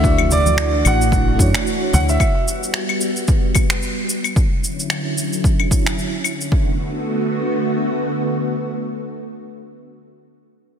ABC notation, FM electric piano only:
X:1
M:4/4
L:1/8
Q:"Swing 16ths" 1/4=111
K:Bm
V:1 name="FM electric piano"
[A,DEFd]4- [A,DEFd] [A,DEFc]3 | z8 | z8 | z8 |
z8 |]